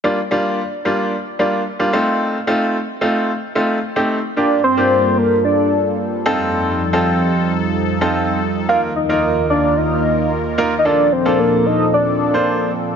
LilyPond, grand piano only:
\new Staff \with { instrumentName = "Grand piano" } { \time 4/4 \key g \minor \tempo 4 = 111 <g bes d' f'>16 r16 <g bes d' f'>8 r8 <g bes d' f'>8 r8 <g bes d' f'>8 r16 <g bes d' f'>16 <a c' ees' f'>8~ | <a c' ees' f'>16 r16 <a c' ees' f'>8 r8 <a c' ees' f'>8 r8 <a c' ees' f'>8 r16 <a c' ees' g'>8 r16 | <bes d' f' g'>8 r16 <bes d' f' g'>4 r4. r16 <c' ees' f' a'>8~ | <c' ees' f' a'>8 r16 <c' ees' f' a'>4 r4 <c' ees' f' a'>8. r8 |
<bes ees' f' bes'>8 r16 <bes ees' f' bes'>4 r4. r16 <bes ees' f' bes'>16 r16 | <bes d' f' a'>8 r16 <bes d' f' a'>4 r4 <bes d' f' c''>8. r8 | }